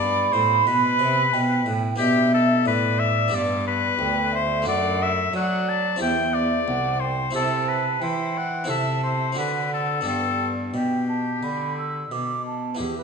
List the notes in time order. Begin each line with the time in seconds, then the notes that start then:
Already playing: B3 D4 G4 D5
0.00 G2 B5
0.33 A2 C5
0.67 B2 B4
0.99 C3
1.33 B2 G5
1.66 A2
1.96 B3 D4 G4 E5
2.00 B2
2.34 A4
2.66 A2 B4 D5
3.00 E5
3.28 B3 D4 G4
3.33 G2 D5
3.68 B4
3.99 D2 G5
4.32 C5 E5
4.62 A3 D4 A4
4.66 F#2 D5 F#5
5.03 E5
5.33 F#3 D5 F#5
5.69 A5
5.96 C4 E4 G4
6.01 E2 E5 G5
6.34 D5
6.68 C2 F#5
7.00 C5 G5
7.31 C4 E4 G4
7.35 C3 A4 A5
7.69 B4
8.01 E3 C5 G5
8.38 F#5
8.64 C4 E4 A4
8.68 C3 E5 A5
9.04 C5
9.32 C4 D4 F#4 F#5
9.37 D3 B4
9.74 A4
10.01 B3 D4 G4 G5
10.05 G2 A4
10.74 B2 G4 G5
11.08 A5
11.43 D3 B5
11.77 E6
12.11 B2 D6
12.46 A5
12.75 B3 E4 G4
12.79 E2 G4
12.98 B4